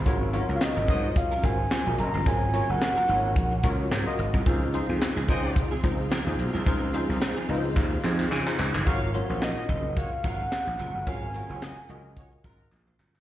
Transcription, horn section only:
X:1
M:4/4
L:1/16
Q:"Swing 16ths" 1/4=109
K:Abmix
V:1 name="Horn section"
z6 [B,Ge]2 z8 | z16 | z6 [CAe]3 z6 z | z16 |
[DBf]2 z [B,Gd] [B,Ge]2 z2 [B,Gd] z [DBf]2 z4 | [DBf]2 z [B,Gd] [B,Ge]2 z2 [B,Gd] z [G,FB]2 z4 |]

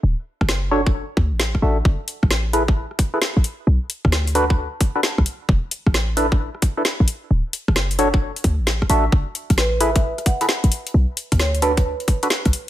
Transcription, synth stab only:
X:1
M:4/4
L:1/16
Q:"Swing 16ths" 1/4=132
K:Bdor
V:1 name="Synth stab"
z6 [DFAc] z6 z [DFAe] z | z6 [EGAB] z4 [EGAB] z4 | z6 [DFAB] z4 [DFAB] z4 | z6 [DEAB] z4 [DEAB] z4 |
z6 [DFAc] z6 z [DFAe] z | z6 [EGAB] z4 [EGAB] z4 | z6 [DFAB] z4 [DFAB] z4 |]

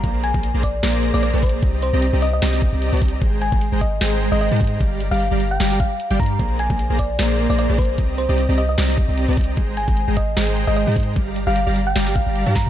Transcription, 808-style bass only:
X:1
M:4/4
L:1/16
Q:"Swing 16ths" 1/4=151
K:Ablyd
V:1 name="808-style bass" clef=bass
B,,,3 B,,,2 B,,,3 B,,,3 B,,,2 B,,,3 | C,,3 C,,2 C,,3 C,,3 C,,2 C,,3 | A,,,3 A,,,2 A,,,3 A,,,3 A,,,2 A,,3 | G,,,3 G,,,2 G,,,3 G,,,3 z2 G,,, G,,2 |
B,,,3 B,,,2 B,,,3 B,,,3 B,,,2 B,,,3 | C,,3 C,,2 C,,3 C,,3 C,,2 C,,3 | A,,,3 A,,,2 A,,,3 A,,,3 A,,,2 A,,3 | G,,,3 G,,,2 G,,,3 G,,,3 G,,,2 G,,3 |]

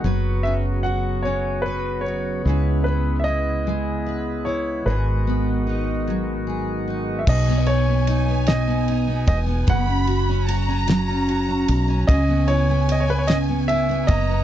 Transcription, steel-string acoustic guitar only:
X:1
M:6/8
L:1/16
Q:3/8=50
K:B
V:1 name="Steel-string acoustic guitar"
[F,B]2 C2 F2 C2 B2 F2 | [C,B]2 B,2 E2 G,2 B2 E2 | [G,,G]2 B,2 D2 F,2 G2 D2 | B,, B, D B, D B, B,, B, D B, D B, |
F, C F C F C F, C F C F C | C, B, E B, E B, C, B, E B, E B, |]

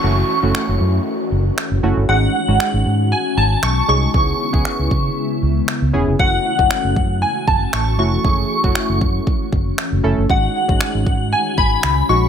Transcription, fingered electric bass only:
X:1
M:4/4
L:1/16
Q:1/4=117
K:F#dor
V:1 name="Fingered electric bass" clef=bass
F,,,2 z F,,, z F,,, F,,2 z2 F,,,2 z F,,, F,,, =G,,, | G,,,2 z G,,, z G,,, G,,3 z G,,,2 B,,,2 ^B,,,2 | C,,2 z C,, z C,, C,2 z2 C,,2 z C,, E,,, ^E,,, | z3 F,,, z F,,, F,,3 z F,,,2 A,,,2 ^E,,,2 |
F,,,2 z F,,, z F,,, F,,2 z2 F,,,2 z F,,, F,,, =G,,, | G,,,2 z G,,, z G,,, G,,3 z G,,,2 C,,2 ^A,,,2 |]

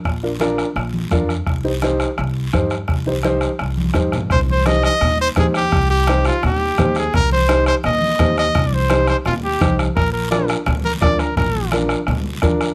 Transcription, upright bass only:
X:1
M:4/4
L:1/8
Q:1/4=170
K:Cm
V:1 name="Upright bass" clef=bass
B,,,4 B,,,2 F,,2 | C,,4 C,,2 G,,2 | C,,4 C,,2 G,,2 | C,,4 E,,2 E,,2 |
C,,4 E,,2 E,,2 | C,,4 E,,2 E,,2 | C,,4 E,,2 C,,2 | B,,,4 D,,2 D,,2 |
B,,,4 D,,2 D,,2 |]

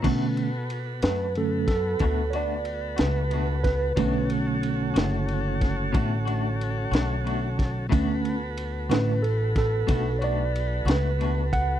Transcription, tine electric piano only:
X:1
M:12/8
L:1/8
Q:3/8=61
K:Bm
V:1 name="Tine electric piano"
z3 B A A2 [cd]2 B2 B- | B z8 z3 | z3 B A A2 [cd]2 B2 f |]
V:2 name="Tine electric piano"
[D,A,C] z3 [D,A,C] z6 z | [D,A,C]12 | [D,A,C] z2 [D,A,C] z8 |]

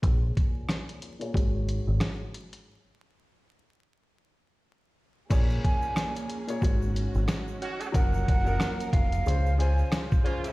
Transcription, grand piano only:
X:1
M:4/4
L:1/16
Q:"Swing 16ths" 1/4=91
K:Bbm
V:1 name="Grand piano"
[B,,B,Ad]6 z [B,,B,Ad] [A,,A,Gd]6 z2 | z16 | [B,,B,Ad]6 z [B,,B,Ad] [A,,A,Gd]6 z2 | [F,G,DB]3 [F,G,DB]4- [F,G,DB] [D,DFc] z [D,DFc]4 [D,DFc]2 |]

